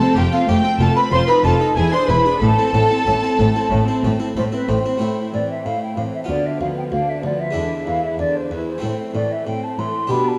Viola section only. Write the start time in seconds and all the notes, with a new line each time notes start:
0.01 C4
0.17 A3
0.33 C4
0.49 A3
0.65 C4
0.81 A3
0.96 C4
1.12 F4
1.28 D#4
1.44 F4
1.61 D#4
1.77 E4
1.93 D4
2.09 E4
2.26 D4
2.42 A3
2.58 C4
2.74 A3
2.91 C4
3.07 A3
3.23 C4
3.39 A3
3.55 C4
3.71 A3
3.87 C4
4.04 A3
4.20 C4
4.36 A3
4.52 C4
4.69 A3
4.86 C4
5.01 A3
5.33 E3
5.65 A3
5.97 E3
6.29 D3
6.61 F3
6.92 D3
7.24 F3
7.55 D3
7.87 E3
8.18 D3
8.51 E3
8.83 A3
9.14 E3
9.46 A3
9.78 E3
10.09 B3